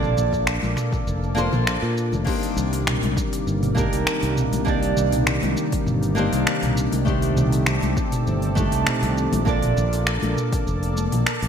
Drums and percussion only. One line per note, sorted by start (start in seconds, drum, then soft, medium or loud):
0.03 mid tom medium
0.03 shaker soft
0.17 low conga medium
0.17 shaker medium
0.33 kick medium
0.33 shaker soft
0.47 finger snap loud
0.47 shaker soft
0.63 high conga medium
0.63 shaker soft
0.77 finger snap soft
0.77 mid tom medium
0.77 shaker medium
0.93 kick loud
0.93 shaker soft
1.07 shaker soft
1.23 shaker soft
1.37 high conga medium
1.37 shaker medium
1.53 mid tom medium
1.53 low conga medium
1.53 shaker soft
1.67 finger snap loud
1.67 shaker soft
1.83 shaker soft
1.97 shaker medium
2.12 high conga medium
2.12 low conga medium
2.12 shaker soft
2.27 kick loud
2.27 crash medium
2.27 shaker soft
2.43 open hi-hat soft
2.43 shaker soft
2.57 low conga medium
2.57 shaker medium
2.73 open hi-hat medium
2.73 shaker soft
2.87 finger snap loud
2.87 mid tom medium
2.87 shaker soft
3.03 open hi-hat soft
3.03 high conga medium
3.03 shaker soft
3.17 kick loud
3.17 shaker medium
3.33 open hi-hat medium
3.33 shaker soft
3.48 shaker soft
3.63 mid tom medium
3.63 open hi-hat soft
3.63 shaker soft
3.76 kick loud
3.76 high conga medium
3.76 shaker medium
3.93 open hi-hat medium
3.93 shaker soft
4.07 finger snap loud
4.07 shaker soft
4.23 open hi-hat soft
4.23 shaker soft
4.37 mid tom medium
4.37 shaker medium
4.52 open hi-hat medium
4.52 high conga medium
4.52 low conga medium
4.52 shaker soft
4.67 kick loud
4.67 shaker soft
4.83 open hi-hat soft
4.83 shaker soft
4.97 low conga medium
4.97 shaker medium
5.12 mid tom medium
5.12 open hi-hat medium
5.12 shaker soft
5.27 finger snap loud
5.27 shaker soft
5.43 open hi-hat soft
5.43 high conga loud
5.43 shaker soft
5.57 shaker medium
5.72 kick loud
5.72 open hi-hat medium
5.72 shaker soft
5.87 mid tom medium
5.87 shaker soft
6.03 open hi-hat soft
6.03 shaker soft
6.17 high conga medium
6.17 shaker medium
6.33 open hi-hat medium
6.33 low conga medium
6.33 shaker soft
6.47 finger snap loud
6.47 shaker soft
6.63 mid tom medium
6.63 open hi-hat soft
6.63 shaker soft
6.77 shaker medium
6.92 open hi-hat medium
6.92 high conga medium
6.92 low conga medium
6.92 shaker soft
7.07 kick loud
7.07 shaker soft
7.22 open hi-hat soft
7.22 shaker soft
7.36 mid tom medium
7.36 low conga medium
7.36 shaker medium
7.52 open hi-hat medium
7.52 shaker soft
7.66 finger snap loud
7.66 shaker soft
7.82 open hi-hat soft
7.82 high conga medium
7.82 shaker soft
7.97 kick loud
7.97 shaker medium
8.12 mid tom medium
8.12 open hi-hat medium
8.12 shaker soft
8.27 shaker soft
8.42 open hi-hat soft
8.42 shaker soft
8.57 kick loud
8.57 high conga medium
8.57 shaker medium
8.72 open hi-hat medium
8.72 shaker soft
8.87 finger snap loud
8.87 mid tom medium
8.87 shaker soft
9.03 open hi-hat soft
9.03 shaker soft
9.18 shaker medium
9.32 open hi-hat medium
9.32 high conga medium
9.32 low conga medium
9.32 shaker soft
9.47 kick loud
9.47 shaker soft
9.62 mid tom medium
9.62 open hi-hat soft
9.62 shaker soft
9.77 low conga medium
9.77 shaker medium
9.93 open hi-hat soft
9.93 shaker soft
10.07 finger snap loud
10.07 shaker soft
10.22 open hi-hat soft
10.22 high conga loud
10.22 shaker soft
10.37 mid tom medium
10.37 shaker medium
10.53 kick loud
10.53 open hi-hat medium
10.53 shaker soft
10.67 shaker soft
10.83 open hi-hat soft
10.83 shaker soft
10.97 high conga medium
10.97 shaker medium
11.12 mid tom medium
11.12 open hi-hat medium
11.12 low conga medium
11.12 shaker soft
11.26 finger snap loud
11.26 shaker medium
11.42 open hi-hat soft
11.42 shaker soft